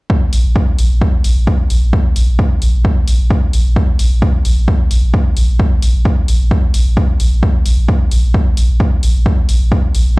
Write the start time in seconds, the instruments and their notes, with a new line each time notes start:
0.10 kick
0.33 sub bass A#1, open hi-hat
0.44 sub bass A#1
0.56 kick
0.78 sub bass A#1, open hi-hat
0.90 sub bass A#1
1.01 kick
1.24 sub bass A#1, open hi-hat
1.36 sub bass A#1
1.47 kick
1.70 sub bass A#1, open hi-hat
1.82 sub bass A#1
1.93 kick
2.16 sub bass A#1, open hi-hat
2.28 sub bass A#1
2.39 kick
2.62 sub bass A#1, open hi-hat
2.73 sub bass A#1
2.85 kick
3.08 sub bass A#1, open hi-hat
3.19 sub bass A#1
3.30 kick
3.53 sub bass A#1, open hi-hat
3.65 sub bass A#1
3.76 kick
3.99 sub bass A#1, open hi-hat
4.11 sub bass A#1
4.22 kick
4.45 sub bass A#1, open hi-hat
4.57 sub bass A#1
4.68 kick
4.91 sub bass A#1, open hi-hat
5.02 sub bass A#1
5.14 kick
5.37 sub bass A#1, open hi-hat
5.48 sub bass A#1
5.59 kick
5.82 sub bass A#1, open hi-hat
5.94 sub bass A#1
6.05 kick
6.28 sub bass A#1, open hi-hat
6.40 sub bass A#1
6.51 kick
6.74 sub bass A#1, open hi-hat
6.86 sub bass A#1
6.97 kick
7.20 sub bass A#1, open hi-hat
7.31 sub bass A#1
7.43 kick
7.66 sub bass A#1, open hi-hat
7.77 sub bass A#1
7.88 kick
8.11 sub bass A#1, open hi-hat
8.23 sub bass A#1
8.34 kick
8.57 sub bass A#1, open hi-hat
8.69 sub bass A#1
8.80 kick
9.03 sub bass A#1, open hi-hat
9.15 sub bass A#1
9.26 kick
9.49 sub bass A#1, open hi-hat
9.60 sub bass A#1
9.72 kick
9.95 sub bass A#1, open hi-hat
10.06 sub bass A#1